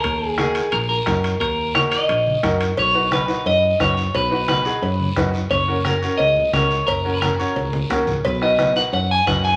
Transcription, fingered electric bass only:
\new Staff \with { instrumentName = "Fingered electric bass" } { \clef bass \time 4/4 \key ces \lydian \tempo 4 = 176 ees,2 bes,,4 ges,4 | ees,2 bes,,4 ges,4 | b,,2 fis,4 fis,4 | b,,2 fis,4 fis,4 |
ges,,2 des,4 des,4 | ges,,2 des,4 ees,8 des,8 | b,,2 fis,4 fis,4 | }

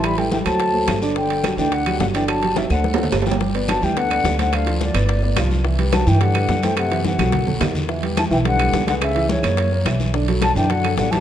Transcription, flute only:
\new Staff \with { instrumentName = "Flute" } { \time 4/4 \key g \major \tempo 4 = 214 b''8 g''8 g''8 a''2 r8 | g''4. g''8 fis''4 fis''8 g''8 | a''4 e''8 fis''4. r4 | r4 a''8 g''8 fis''4. fis''8 |
f''4 d''2~ d''8 r8 | r4 a''8 g''8 fis''4. g''8 | fis''4 fis''2~ fis''8 r8 | r4 a''8 g''8 fis''4. fis''8 |
e''4 cis''2~ cis''8 r8 | r4 a''8 g''8 fis''4 fis''8 a''8 | }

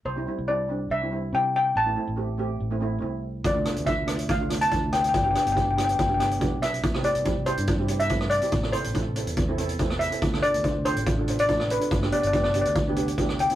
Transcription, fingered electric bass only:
\new Staff \with { instrumentName = "Fingered electric bass" } { \clef bass \time 4/4 \key c \major \tempo 4 = 142 c,8 r16 c,4~ c,16 c,4 c4 | a,,8 r16 a,,4~ a,,16 a,,4 c,4 | d,8 r16 d,4~ d,16 d,4 d,4 | g,,8 r16 g,,4~ g,,16 g,,4 b,,4 |
c,8 r16 c,4 g,2 r16 | a,,8 r16 a,,4 e,2 r16 | d,8 r16 d,4 a,,2 r16 | g,,8 r16 g,,4 d,2 r16 | }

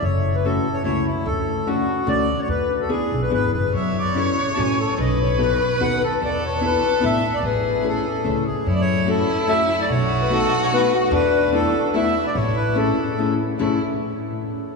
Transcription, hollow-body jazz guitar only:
\new Staff \with { instrumentName = "Hollow-body jazz guitar" } { \time 3/4 \key a \major \tempo 4 = 146 r4 <a cis' e' fis'>8 r8 <a cis' e' fis'>8 r8 | r4 <a cis' d' fis'>8 r8 <a cis' d' fis'>8 r8 | r4 <b d' e' gis'>8 r8 <b d' e' gis'>8 r8 | r4 <cis' e' fis' a'>8 r8 <cis' e' fis' a'>8 r8 |
r4 <b dis' fis' a'>8 r8 <b dis' fis' a'>8 r8 | r4 <b d' e' a'>8 r8 <b d' e' a'>8 r8 | r4 <a cis' e' gis'>8 r8 <a cis' e' gis'>8 r8 | r4 <a cis' e' fis'>8 r8 <a cis' e' fis'>8 r8 |
r4 <a b dis' fis'>8 r8 <a b dis' fis'>8 r8 | r4 <a b d' e'>8 r8 <a b d' e'>8 r8 | r4 <a cis' e' gis'>8 r8 <a cis' e' gis'>8 r8 | <a cis' e' gis'>8 r2 r8 | }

